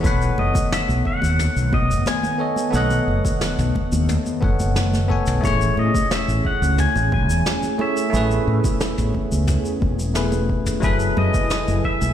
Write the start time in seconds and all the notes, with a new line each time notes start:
0.01 B1 A3 B3 A4, kick, muted conga, high conga, low conga, shaker
0.05 D#3 B4 C#5 F#5
0.22 shaker
0.38 F#1 D#5, muted conga
0.54 kick, high conga, shaker
0.72 E5, snare, shaker
0.89 B1, muted conga, shaker
1.05 F#5, kick
1.22 D#2, muted conga, high conga, shaker
1.39 mid tom, shaker
1.56 B1, shaker
1.73 D#5, kick, muted conga, high conga
1.90 F#1, shaker
2.06 G#5, snare, muted conga, shaker
2.23 high conga, shaker
2.38 B3 A4 C#5 D#5
2.56 muted conga, shaker
2.70 B1 B3 A4, high conga, low conga, shaker
2.75 C#5 D#5 F#5
2.91 muted conga, shaker
3.08 F#1
3.25 kick, high conga, shaker
3.41 snare, muted conga, shaker
3.58 B1, mid tom, shaker
3.75 kick, muted conga
3.92 D#2, high conga, shaker
4.09 mid tom, shaker
4.26 muted conga, shaker
4.41 F#1 B3 A4 C#5 F#5, kick, high conga
4.59 F#1, muted conga, shaker
4.76 snare, shaker
4.93 snare, high conga, shaker
5.08 B3 A4 C#5 G#5, kick, muted conga
5.26 B1, mid tom, shaker
5.41 A1 A3 C#4 E4 G#4, kick, high conga, low conga, shaker
5.45 G#4 C#5
5.61 shaker
5.77 A2 D#5, muted conga
5.94 kick, high conga, shaker
6.11 E5, snare, muted conga, shaker
6.28 A1, shaker
6.45 F#5, kick
6.62 C#2, muted conga, high conga, shaker
6.78 G#5, mid tom, shaker
6.96 A1, muted conga, shaker
7.12 G#5, kick, high conga
7.30 E2, shaker
7.46 snare, muted conga, shaker
7.63 high conga, shaker
7.78 A3 E4 G#4 C#5 E5, muted conga
7.97 shaker
8.10 A1 A3 B3 E4, low conga, shaker
8.14 G#4 B4, high conga
8.31 muted conga, shaker
8.47 A2
8.64 kick, muted conga, high conga, shaker
8.80 snare, shaker
8.98 A1, mid tom, shaker
9.15 kick, muted conga
9.32 C#2, high conga, shaker
9.47 mid tom, muted conga, shaker
9.65 shaker
9.81 E1, kick, high conga
9.99 muted conga, shaker
10.14 A3 E4 G#4 B4, snare, shaker
10.32 muted conga, high conga, shaker
10.49 kick
10.66 mid tom, shaker
10.80 F#1 F#3 A3 E4 G#4 B4 G#5, kick, muted conga, high conga, low conga, shaker
10.84 A4 B4
11.00 shaker
11.17 F#2 D#5, muted conga
11.34 kick, high conga, shaker
11.50 snare, shaker
11.68 F#1, muted conga, shaker
11.84 E5, kick
12.01 B1, muted conga, high conga, shaker